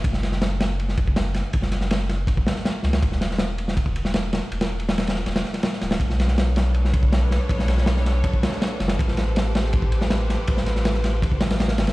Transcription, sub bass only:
X:1
M:4/4
L:1/8
Q:1/4=161
K:Bm
V:1 name="Sub bass" clef=bass
F,,,6- F,,, z | F,,,4 F,,, z2 C,, | E,,,6- E,,, z | E,,,4 E,,, z2 D,,, |
B,,,6- B,,, z | B,,,4 B,,, z2 F,,, | A,,,6- A,,, z | A,,,4 A,,, A,,,2 G,,, |]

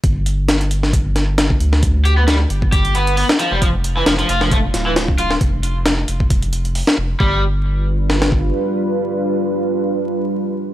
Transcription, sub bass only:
X:1
M:4/4
L:1/16
Q:"Swing 16ths" 1/4=134
K:Gmix
V:1 name="Sub bass" clef=bass
G,,,12- G,,,2 D,,2- | D,,6 G,,,6- G,,, z2 F,,,- | F,,,4 F,,, z F,,,4 D,,,6 | F,,,6 F,,,6- F,,, z F,,, z |
G,,,12 z4 | z16 |]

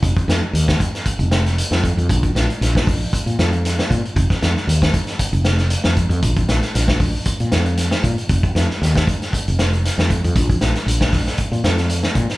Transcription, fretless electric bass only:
X:1
M:4/4
L:1/16
Q:"Swing 16ths" 1/4=116
K:Bbdor
V:1 name="Fretless electric bass" clef=bass
F,,, z F,, z E,,2 z3 F,,,4 F,,2 F,, | B,,,2 B,,, z B,,,4 z B,, F,,4 B,, z | F,,, z F,, z E,,2 z3 F,,,4 F,,2 F,, | B,,,2 B,,, z B,,,4 z B,, F,,4 B,, z |
F,,, z F,, z E,,2 z3 F,,,4 F,,2 F,, | B,,,2 B,,, z B,,,4 z B,, F,,4 B,, z |]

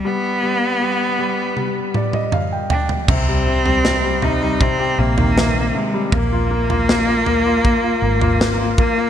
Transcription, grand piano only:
X:1
M:4/4
L:1/16
Q:1/4=79
K:Gphr
V:1 name="Grand piano"
z8 z2 d e f g g2 | [K:Cm] z16 | z16 |]
V:2 name="Grand piano" clef=bass
G,2 G,2 G,2 G,2 G,8 | [K:Cm] C, G, C, G, C, G, C, G, C, G C, E, C,2 C, G, | B, F B, F B, F B, F B, F B, F B, F B, F |]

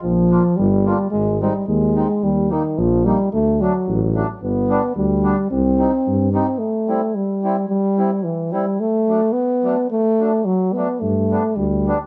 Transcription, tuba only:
X:1
M:2/4
L:1/8
Q:1/4=109
K:Cm
V:1 name="Tuba" clef=bass
B,,,2 G,,,2 | A,,,2 E,,2 | E,,2 B,,,2 | D,,2 =A,,,2 |
G,,,2 D,,2 | C,,2 G,,2 | [K:C] z4 | z4 |
z4 | z4 | G,,2 D,,2 |]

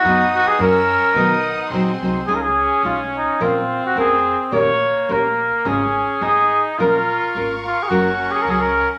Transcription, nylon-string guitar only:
X:1
M:2/4
L:1/8
Q:"Swing" 1/4=107
K:B
V:1 name="Nylon-string guitar"
[F,B,DB] z [F,CEA] z | [B,,D,F,B,DB] z [F,^B,D^B] [F,B,DB] | [K:Db] [D,A,EFA] z [A,EFA] z | [B,,F,B,DFB] z [B,DFB] z |
[B,,E,B,D=GB] z [B,DGB] z | [A,,D,A,DFA] z [A,CEA] z | [B,,F,B,DFB] z [B,DFB] z | [G,DGB] z [G,DGB] z |]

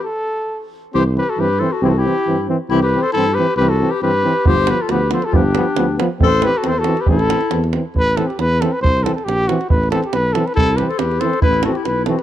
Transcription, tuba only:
X:1
M:2/4
L:1/8
Q:"Swing 16ths" 1/4=137
K:C
V:1 name="Tuba" clef=bass
z4 | C,,2 G,,2 | C,,2 G,,2 | C,,2 G,,2 |
C,,2 G,,2 | G,,,2 D,,2 | G,,,2 D,,2 | A,,,2 E,,2 |
A,,,2 E,,2 | A,,,2 E,,2 | C,,2 _B,,,2 | A,,,2 B,,,2 |
C,,2 E,,2 | A,,,2 B,,,2 |]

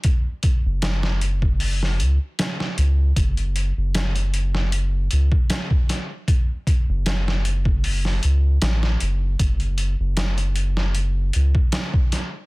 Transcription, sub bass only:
X:1
M:4/4
L:1/16
Q:"Swing 16ths" 1/4=77
K:F#m
V:1 name="Sub bass" clef=bass
z3 F,,,6- F,,, C,, z3 C,,2 | F,,,3 F,,,6- F,,, C,, z4 z | z3 F,,,6- F,,, C,,2 A,,,2 F,,,2 | F,,,3 F,,,6- F,,, C,, z4 z |]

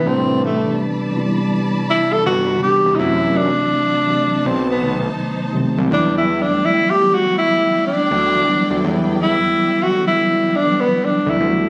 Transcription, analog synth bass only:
X:1
M:4/4
L:1/16
Q:"Swing 16ths" 1/4=82
K:Em
V:1 name="Analog synth bass" clef=bass
A,,,3 z8 z G,,,2 z E,,, | F,,3 z4 z B,,,4 z2 C,, C,, | E,,3 z8 z D,,2 z D,, | E,,3 z8 z2 D,, D,,2 |]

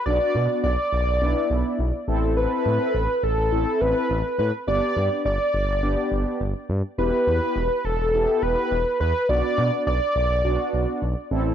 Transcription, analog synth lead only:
X:1
M:4/4
L:1/8
Q:1/4=104
K:Bphr
V:1 name="Analog synth lead"
d2 d4- d z | B3 A2 B2 B | d2 d4- d z | B3 A2 B2 B |
d2 d4- d z |]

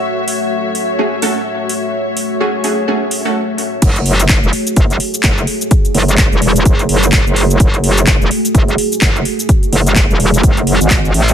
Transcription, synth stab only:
X:1
M:4/4
L:1/16
Q:"Swing 16ths" 1/4=127
K:F#m
V:1 name="Synth stab"
z8 [A,CFG] z [A,CFA] z4 z | z4 [A,CFG] z [A,CFG]2 [A,CFG] z2 [A,CFA] z4 | z16 | z16 |
z16 | z16 |]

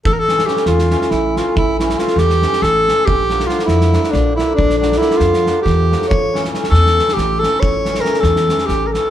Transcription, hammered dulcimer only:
X:1
M:7/8
L:1/8
Q:1/4=139
K:none
V:1 name="Hammered dulcimer" clef=bass
z [^C,E,A,^C] [C,E,A,C] z [C,E,A,C] z [C,E,A,C] | z [^C,E,A,^C] [C,E,A,C] z [C,E,A,C] z [C,E,A,C] | z [D,F,_B,D] [D,F,B,D] z [D,F,B,D] z [D,F,B,D] | z [D,F,_B,D] [D,F,B,D] z [D,F,B,D] z [D,F,B,D] |
z [^C,E,A,^C] [C,E,A,C] z [C,E,A,C] z [C,E,A,C] | z [^C,E,A,^C] [C,E,A,C] z [C,E,A,C] z [C,E,A,C] |]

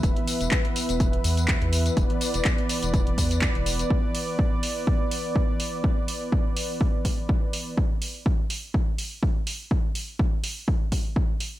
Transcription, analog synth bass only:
X:1
M:4/4
L:1/16
Q:"Swing 16ths" 1/4=124
K:C
V:1 name="Analog synth bass" clef=bass
E,,, z2 E,,, z3 E,,,2 z E,,2 z E,,2 z | E,,, z2 E,,, z3 E,,,2 z E,,2 z E,,,2 z | z16 | z16 |
z16 | z16 |]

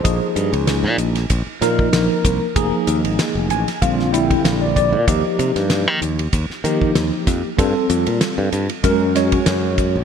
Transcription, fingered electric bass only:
X:1
M:4/4
L:1/16
Q:"Swing 16ths" 1/4=96
K:Bblyd
V:1 name="Fingered electric bass" clef=bass
B,,, z G,, _D,,2 B,, B,,,2 B,,, z B,,2 B,,, z C,, z | F,,, z _E,, _A,,, z F,,, =A,,, z B,,,4 B,,,3 B,, | _E,, z C, G,,2 _E, E,,2 E,, z E,2 E,, z F,, z | G,, z F,, B,, z G,, G,, z _G,,4 G,,3 C,, |]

